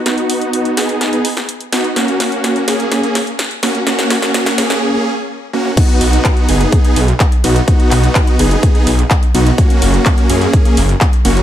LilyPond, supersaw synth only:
\new Staff \with { instrumentName = "Supersaw synth" } { \time 4/4 \key b \major \tempo 4 = 126 <b dis' fis'>4. <b dis' gis'>8. <b dis' gis'>16 r4 <b dis' fis'>16 r16 | <ais cis' fis'>4. <ais cis' gis'>8. <ais cis' gis'>16 r4 <ais cis' fis'>16 r16 | <ais cis' fis'>4. <ais cis' gis'>8. <ais cis' gis'>16 r4 <ais cis' fis'>16 r16 | <b dis' fis'>4. <b dis' gis'>8. <b dis' gis'>16 r4 <b dis' fis'>16 r16 |
<b dis' fis'>4. <b dis' gis'>8. <b dis' gis'>16 r4 <b dis' fis'>16 r16 | <ais cis' fis'>4. <ais cis' gis'>8. <ais cis' gis'>16 r4 <ais cis' fis'>16 r16 | }